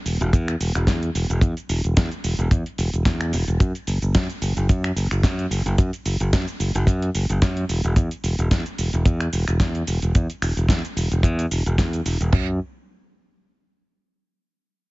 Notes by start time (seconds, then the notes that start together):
0.06 E1, open hi-hat, cabasa
0.21 E1, closed hi-hat, cabasa
0.33 E2, kick, closed hi-hat, cabasa
0.48 finger snap, closed hi-hat
0.60 E1, open hi-hat, cabasa
0.75 E1, finger snap, closed hi-hat, cabasa
0.87 E2, kick, snare, closed hi-hat, cabasa
1.03 closed hi-hat
1.15 E1, open hi-hat, cabasa
1.30 E1, closed hi-hat, cabasa
1.41 E2, kick, closed hi-hat, cabasa
1.57 closed hi-hat, cabasa
1.69 E1, open hi-hat, cabasa
1.84 E1, closed hi-hat, cabasa
1.97 E2, kick, snare, closed hi-hat, cabasa
2.12 closed hi-hat, cabasa
2.24 E1, open hi-hat, cabasa
2.39 E1, closed hi-hat, cabasa
2.51 E2, kick, closed hi-hat, cabasa
2.66 closed hi-hat
2.78 E1, open hi-hat, cabasa
2.94 E1, closed hi-hat, cabasa
3.05 E2, kick, snare, closed hi-hat, cabasa
3.21 finger snap, closed hi-hat
3.33 E1, open hi-hat, cabasa
3.48 E1, closed hi-hat, cabasa
3.60 F#2, kick, closed hi-hat, cabasa
3.75 closed hi-hat, cabasa
3.87 F#1, open hi-hat, cabasa
4.02 F#1, closed hi-hat, cabasa
4.15 F#2, kick, snare, closed hi-hat, cabasa
4.30 closed hi-hat, cabasa
4.42 F#1, open hi-hat, cabasa
4.57 F#1, closed hi-hat, cabasa
4.69 F#2, kick, closed hi-hat, cabasa
4.84 finger snap, closed hi-hat
4.96 F#1, open hi-hat, cabasa
5.11 F#1, finger snap, closed hi-hat, cabasa
5.23 F#2, kick, snare, closed hi-hat, cabasa
5.39 closed hi-hat
5.51 F#1, open hi-hat, cabasa
5.66 F#1, closed hi-hat, cabasa
5.78 F#2, kick, closed hi-hat, cabasa
5.93 closed hi-hat, cabasa
6.06 F#1, open hi-hat, cabasa
6.20 F#1, closed hi-hat, cabasa
6.33 F#2, kick, snare, closed hi-hat, cabasa
6.48 closed hi-hat, cabasa
6.60 F#1, open hi-hat, cabasa
6.75 F#1, closed hi-hat, cabasa
6.87 F#2, kick, closed hi-hat, cabasa
7.02 closed hi-hat
7.15 F#1, open hi-hat, cabasa
7.29 F#1, closed hi-hat, cabasa
7.42 F#2, kick, snare, closed hi-hat, cabasa
7.57 closed hi-hat
7.69 E1, open hi-hat, cabasa
7.84 E1, closed hi-hat, cabasa
7.96 E2, kick, closed hi-hat, cabasa
8.11 closed hi-hat, cabasa
8.24 E1, open hi-hat, cabasa
8.39 E1, closed hi-hat, cabasa
8.51 E2, kick, snare, closed hi-hat, cabasa
8.66 closed hi-hat, cabasa
8.78 E1, open hi-hat, cabasa
8.93 E1, closed hi-hat, cabasa
9.05 E2, kick, closed hi-hat, cabasa
9.20 finger snap, closed hi-hat
9.33 E1, open hi-hat, cabasa
9.48 E1, finger snap, closed hi-hat, cabasa
9.60 E2, kick, snare, closed hi-hat, cabasa
9.75 closed hi-hat
9.87 E1, open hi-hat, cabasa
10.02 E1, closed hi-hat, cabasa
10.15 E2, kick, closed hi-hat, cabasa
10.30 closed hi-hat, cabasa
10.42 E1, finger snap, open hi-hat, cabasa
10.57 E1, closed hi-hat, cabasa
10.68 E2, kick, snare, closed hi-hat, cabasa
10.85 closed hi-hat, cabasa
10.97 E1, open hi-hat, cabasa
11.11 E1, closed hi-hat, cabasa
11.23 E2, kick, closed hi-hat, cabasa
11.39 closed hi-hat, cabasa
11.51 E1, open hi-hat, cabasa
11.66 E1, closed hi-hat, cabasa
11.78 E2, kick, snare, closed hi-hat, cabasa
11.93 closed hi-hat, cabasa
12.06 E1, open hi-hat, cabasa
12.21 E1, closed hi-hat, cabasa
12.33 F#2, kick, floor tom, crash